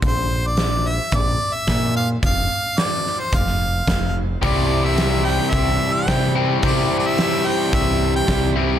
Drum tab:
HH |x---x---x---x---|x---x---x---x---|x---x---x---x---|x---x---x---x---|
SD |----o-------o---|----o-o--o--o---|----o-o-----o---|----o-------o---|
BD |o-------o---o---|o-------o---o---|o-------o---o---|o-------o---o---|